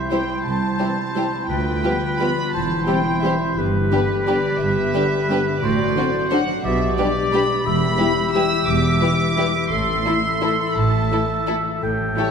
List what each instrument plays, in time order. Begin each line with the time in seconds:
Already playing: harp C3 G3 C4 E4 C5, clarinet E4, oboe C5
0.11 french horn section E3 C4, viola section G3 E4, violin section G4 C5 G5, harp C5
0.29 harp G3
0.45 double bass section C2, cello section C2, harp C3, violin section A5
0.63 harp C4
0.79 french horn section E3 C4, viola section G3 E4, harp G3, violin section G4 C5
0.98 harp E4
1.15 french horn section E3 C4, viola section G3 E4, violin section G4 C5, harp C5
1.33 harp G3
1.49 double bass section D2, cello section D2, harp D3, clarinet F4, oboe B4, violin section G5
1.66 harp D4
1.83 french horn section F3 B3, viola section G3 F4, harp G3, violin section G4 B4
2.03 harp F4
2.19 french horn section F3 B3, viola section G3 F4, violin section G4 B4 B5, harp B4
2.38 harp G3
2.53 double bass section E1, cello section E2, harp E3, clarinet E4, oboe C5, violin section A5
2.71 harp G3
2.87 french horn section E3 C4, viola section G3 E4, harp E4, violin section G4 C5 G5
3.06 harp C5
3.23 french horn section E3 C4, viola section G3 E4, harp G4, violin section G4 C5 E5
3.42 harp E4
3.57 double bass section G1, cello section G2, harp G2, clarinet G4, oboe B4
3.75 harp D3
3.92 french horn section D3 B3, viola section G3 D4, harp G3, violin section G4 B4
4.10 harp D4
4.26 french horn section D3 B3, viola section G3 D4, violin section G4 B4 D5
4.44 harp G3
4.59 double bass section G1, harp G2, cello section G2, violin section E5
4.76 harp D3
4.94 french horn section D3 B3, harp G3, viola section G3 D4, violin section G4 B4
5.12 harp D4
5.29 french horn section D3 B3, viola section G3 D4, violin section G4 B4, harp B4
5.47 harp G3
5.61 double bass section A1, cello section A2, harp A2, clarinet F#4, oboe C5, violin section D5
5.79 harp A3
5.96 viola section D3 D4, harp F#3, french horn section F#3 C4, violin section F#4 C5
6.14 harp D4
6.31 viola section D3 D4, french horn section F#3 C4, violin section F#4 C5 F#5, harp C5
6.49 harp F#3
6.64 double bass section B1, cello section B2, harp B2, clarinet G4, oboe D5, violin section E5
6.81 harp B3
6.98 french horn section G3 D4, harp G3, viola section G3 D4, violin section G4 B4 D5
7.16 harp D4
7.32 viola section G3 D4, french horn section G3 D4, violin section G4 B4 B5, harp B4
7.50 harp G3
7.65 double bass section E1, cello section E2, harp E3, clarinet G4, oboe E5, violin section B5
7.83 harp G3
7.98 viola section G3 E4, french horn section G3 E4, harp E4, violin section G4 B4
8.17 harp B4
8.34 viola section G3 E4, french horn section G3 E4, violin section G4 B4 E6, harp G4
8.52 harp E4
8.68 double bass section E1, cello section E2, harp E3, violin section D6
8.85 harp G3
9.01 viola section G3 E4, french horn section G3 E4, harp E4, violin section G4 B4
9.20 harp B4
9.37 viola section G3 E4, french horn section G3 E4, harp G4, violin section G4 B4
9.55 harp E4
9.71 double bass section A1, harp A2, cello section A2, clarinet A4, oboe E5, violin section C6
9.87 harp E3
10.04 harp A3, french horn section A3 E4, viola section A3 E4, violin section E4 A4
10.41 viola section A3 E4, french horn section A3 E4, violin section E4 A4, harp A4
10.59 harp A3
10.70 violin section B5
10.76 double bass section A1, harp A2, cello section A2, violin section A5
10.93 harp E3
11.11 harp A3, viola section A3 E4, french horn section A3 E4, violin section E4 A4
11.29 harp E4
11.47 viola section A3 E4, french horn section A3 E4, violin section E4 A4, harp A4
11.65 harp A3
11.82 double bass section A1, harp A2, cello section A2, clarinet A4, oboe G5
11.99 harp E3
12.16 harp G3, french horn section G3 E4, viola section A3 E4, violin section G4 A4 C#5